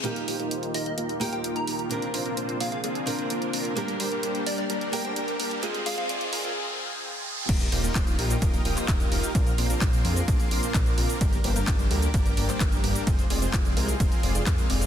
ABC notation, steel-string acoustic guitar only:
X:1
M:4/4
L:1/8
Q:1/4=129
K:Eb
V:1 name="Steel-string acoustic guitar"
[B,EFG]4- [B,EFG] [B,EFG]3 | [CDFB]4- [CDFB] [CDFB]3 | [B,DGB]4- [B,DGB] [B,DGB]3 | [A,CFA]4 z4 |
z8 | z8 | z8 | z8 |]